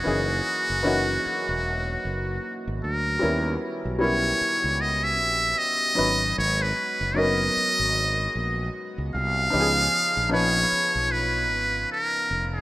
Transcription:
X:1
M:4/4
L:1/16
Q:"Swing 16ths" 1/4=76
K:G#m
V:1 name="Muted trumpet"
F12- F z A2- | A2 z2 c4 d e3 d4 | c B3 d8 z2 ^e2- | ^e4 c4 B4 A3 G |]
V:2 name="Upright piano"
[E,A,CDG]4 [E,A,CDF]8 z4 | [=G,B,CEA]4 [G,B,CEA]8 z2 [F,B,CDB]2- | [F,B,CDB]4 [F,A,B,CDA]8 z4 | [^E,B,CD=G^G]4 [E,B,CDB]8 z4 |]
V:3 name="Analog synth pad"
[F,A,F]16 | [D,B,C=G]12- [D,B,CG]2 [^G,B,F]2- | [G,B,F]16 | [C,D^E]16 |]
V:4 name="Fretless electric bass" clef=bass
F,,,2 z F,,,3 z E,,,3 F,,,2 z G,,, =D,,2 | D,,2 z B,,,3 z C,,3 A,,,2 z2 G,,,2 | G,,,2 z F,,,3 z G,,,3 A,,,2 z C,, ^B,,,2 | C,,2 z A,,,3 z B,,,3 G,,,2 z2 ^E,,,2 |]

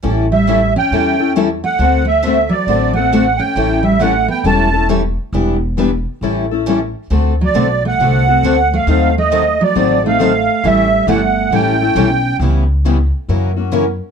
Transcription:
X:1
M:4/4
L:1/8
Q:"Swing" 1/4=136
K:Amix
V:1 name="Accordion"
z e2 g3 z f- | f e2 d2 f2 g- | g e f g a2 z2 | z8 |
z d2 f4 =f- | =f ^d2 =d2 f3 | e2 f2 g4 | z8 |]
V:2 name="Steel-string acoustic guitar"
[E,G,CEA] z [E,G,CEA] z [E,G,CEA] [CEA] [E,G,CEA] z | [D,A,=CFA] z [D,A,CFA] z [D,A,CFA] [CFA] [D,A,CFA] z | [E,G,CEA] z [E,G,CEA] z [E,G,CEA] [CEA] [E,G,CEA] z | [E,B,DG] z [E,B,DG] z [E,G,CEA] [CEA] [E,G,CEA] z |
[D,A,=CFA] z [D,A,CFA] z [D,A,CFA] [CFA] [D,A,CFA] z | [^D,F,^B,^DA] z [D,F,B,DA] z [D,F,B,DA] [B,DA] [D,F,B,DA] z | [E,G,CEA] z [E,G,CEA] z [E,G,CEA] [CEA] [E,G,CEA] z | [C,E,B,CG] z [C,E,B,CG] z [C,E,^A,CF] [A,CF] [C,E,A,CF] z |]
V:3 name="Steel-string acoustic guitar"
[E,G,CEA] z [E,G,CEA] z [E,G,CEA] z [E,G,CEA] z | [D,A,=CFA] z [D,A,CFA] z [D,A,CFA] z [D,A,CFA] z | [E,G,CEA] z [E,G,CEA] z [E,G,CEA] z [E,G,CEA] z | [E,G,DEB] z [E,G,DEB] z [E,G,CEA] z [E,G,CEA] z |
[D,A,=CFA] z [D,A,CFA] z [D,A,CFA] z [D,A,CFA] z | [^D,F,^B,^DA] z [D,F,B,DA] z [D,F,B,DA] z [D,F,B,DA] z | [E,G,CEA] z [E,G,CEA] z [E,G,CEA] z [E,G,CEA] z | [C,G,B,EB] z [C,G,B,EB] z [F,CE^A] z [F,CEA] z |]
V:4 name="Steel-string acoustic guitar"
z G,2 C3 z A,- | A, A,2 F,2 A,2 C- | C G, A, B, C2 z2 | z8 |
z F,2 A,4 A,- | A, A,2 F,2 A,3 | G,2 A,2 C4 | z8 |]
V:5 name="Upright bass" clef=bass
A,,,4 E,,4 | D,,4 A,,,4 | A,,,4 E,,,4 | E,,,4 A,,,4 |
D,,2 B,,,2 =C,,2 D,,2 | ^D,,4 A,,,4 | A,,,2 G,,,2 A,,,2 B,,,2 | C,,4 F,,4 |]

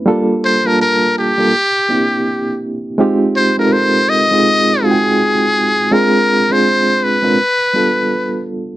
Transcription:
X:1
M:4/4
L:1/16
Q:"Swing 16ths" 1/4=82
K:Fmix
V:1 name="Muted trumpet"
z2 c B B2 G8 z2 | z2 c B c2 e4 _A6 | B3 c3 =B8 z2 |]
V:2 name="Reed electric piano"
[G,B,DFA]2 z [G,B,DFa]3 z [G,B,DFA] z2 [B,CD=EG]4- [B,CDEG] z | [_A,CEFG]2 z [A,CEF=AB]3 z [_A,CEF_A]2 z [A,CEF^Fg]4- [A,CE=F^Fg] z | [_A,CDF_A]2 z [A,CDFA]3 z [A,CDFB] z2 [G,=B,DF=A]4- [G,B,DFA] z |]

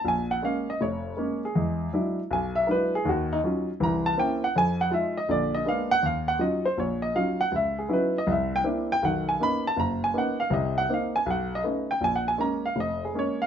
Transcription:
X:1
M:4/4
L:1/8
Q:"Swing" 1/4=160
K:Ebm
V:1 name="Grand piano"
a g f e d3 A- | A2 z2 ^g =e [B=B] ^G | G E z2 b =a =g _g | a g _f e =d e =f g |
f g e =c d e f g | _f A c e =e =g z g | ^f a =b =a ^a _a f =f | e g f a ^f ^d z =g |
(3a g a b f e A d f |]
V:2 name="Grand piano"
B,,,2 [A,B,D] z F,,,2 [A,B,D] z | [=E,,^G,]2 [^F,G,=D=E] z =B,,,2 [F,G,DE] z | [E,,E,]2 [G,DEF] z [=C,,=E,]2 [B,=CD=E] z | F,,2 [A,EF] z [B,,,=D,]2 [A,B,C=D] z |
E,,2 [G,DEF] z B,,,2 [G,DEF] z | D,,2 [G,CDE_F] z =C,,2 [B,=C=D=E] z | [=B,,,^D,]2 [^A,=B,^C^D] z ^F,,,2 [A,B,CD] z | [=C,,=C,]2 [B,=CE] z =B,,,2 [=A,=B,^C^D] z |
B,,,2 [A,B,D] z F,,,2 [A,B,D] z |]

